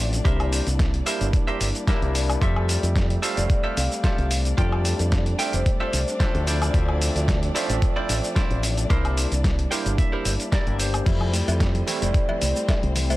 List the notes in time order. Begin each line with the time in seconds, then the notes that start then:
Already playing: A1 F3 A3 C4 D4 D5
0.13 closed hi-hat, cabasa
0.24 C2 G3 A#3 D4 E4 G4 A#4 C5 E5, kick, closed hi-hat, cabasa
0.40 closed hi-hat, high woodblock
0.53 open hi-hat, cabasa
0.67 C2, closed hi-hat, cabasa
0.79 kick, snare, closed hi-hat, cabasa
0.94 closed hi-hat
1.06 G3 A#3 D4 E4 G4 A#4 C5 E5, open hi-hat, cabasa
1.21 G1, closed hi-hat, cabasa
1.33 kick, closed hi-hat, cabasa
1.47 G4 A#4 C5 E5, closed hi-hat
1.61 G1, open hi-hat, cabasa
1.75 closed hi-hat, cabasa
1.87 G3 A#3 D4 E4 G4 A#4 C5 E5, kick, snare, closed hi-hat, cabasa
2.02 C2, closed hi-hat
2.15 open hi-hat, cabasa
2.30 closed hi-hat, cabasa, high woodblock
2.41 F2 G3 A3 C4 D4 F4 G4 A4 D5 E5, kick, closed hi-hat, cabasa
2.56 high woodblock
2.69 A4, open hi-hat, cabasa
2.83 F2, closed hi-hat, cabasa
2.96 kick, snare, closed hi-hat, cabasa
3.10 closed hi-hat
3.22 G3 A3 C4 F4 G4 A4 E5 F5, open hi-hat, cabasa
3.37 F1 D5, closed hi-hat, cabasa
3.50 kick, closed hi-hat, cabasa
3.64 F4 G4 A4 E5
3.77 C2 F5, open hi-hat, cabasa
3.92 cabasa
4.04 F4 G4 A4 E5, kick, snare, closed hi-hat, cabasa
4.18 C2 F5, closed hi-hat
4.31 open hi-hat, cabasa
4.45 closed hi-hat, cabasa
4.57 F2 G3 A3 C4 D4 F4 G4 A4 G5, kick, closed hi-hat, cabasa
4.72 high woodblock
4.85 open hi-hat, cabasa
4.99 F2, closed hi-hat, cabasa
5.12 kick, snare, closed hi-hat, cabasa
5.26 closed hi-hat
5.38 G3 A3 C4 F4 G4 A4 E5 G5, open hi-hat, cabasa
5.53 F1 C5, closed hi-hat, cabasa
5.66 kick, closed hi-hat, cabasa
5.80 F4 G4 A4 C5 E5
5.93 C2, open hi-hat, cabasa
6.08 cabasa
6.20 F3 A3 C4 D4 F4 G4 A4 E5, kick, snare, closed hi-hat, cabasa
6.35 D2, closed hi-hat
6.47 E4 F4 C5 D5, open hi-hat, cabasa
6.62 closed hi-hat, cabasa, high woodblock
6.73 D2 F3 A3 C4 E5, kick, closed hi-hat, cabasa
6.89 high woodblock
7.02 open hi-hat, cabasa
7.15 D2, closed hi-hat, cabasa
7.28 kick, snare, closed hi-hat, cabasa
7.43 closed hi-hat
7.54 F3 A3 C4 E4 F4 C5 D5 E5, open hi-hat, cabasa
7.70 A1, closed hi-hat, cabasa
7.82 kick, closed hi-hat, cabasa
7.96 E4 F4 C5 D5
8.09 A1, open hi-hat, cabasa
8.24 cabasa
8.36 E4 F4 C5 D5, kick, snare, closed hi-hat, cabasa
8.51 A1, closed hi-hat
8.63 open hi-hat, cabasa
8.77 closed hi-hat, cabasa
8.89 C2 G3 A#3 D4 E4 G4 A#4 C5, kick, closed hi-hat, cabasa
9.05 closed hi-hat, high woodblock
9.17 open hi-hat, cabasa
9.32 C2, closed hi-hat, cabasa
9.44 kick, snare, closed hi-hat, cabasa
9.59 closed hi-hat
9.70 G3 A#3 D4 E4 G4 A#4 C5 G5, open hi-hat, cabasa
9.86 G1, closed hi-hat, cabasa
9.98 E5, kick, closed hi-hat, cabasa
10.12 E4 G4 A#4 C5
10.25 G1, open hi-hat, cabasa
10.40 closed hi-hat, cabasa
10.52 E4 G4 A#4 D5, kick, snare, closed hi-hat, cabasa
10.66 G1 G3 A#3 D4 G4, closed hi-hat
10.79 C5, open hi-hat, cabasa
10.94 closed hi-hat, cabasa, high woodblock
11.05 F2 E3 G3 A3 C4 E4 C5, kick, closed hi-hat, crash, cabasa
11.21 F3, high woodblock
11.33 A3 A4, open hi-hat, cabasa
11.48 F2 A3, closed hi-hat, cowbell, cabasa
11.60 A3, kick, snare, closed hi-hat, cabasa
11.75 G3, closed hi-hat
11.87 E3 G3 A3 C4 E4, open hi-hat, cabasa
12.02 F1 A3 D5, closed hi-hat, cabasa
12.14 E3, kick, closed hi-hat, cabasa
12.29 F3, cowbell
12.42 C2 A3, open hi-hat, cabasa
12.56 A3, cabasa
12.68 A3, kick, snare, closed hi-hat, cowbell, cabasa
12.83 C2 G3, closed hi-hat
12.95 E3, open hi-hat, cabasa
13.10 A3 C5, closed hi-hat, cowbell, cabasa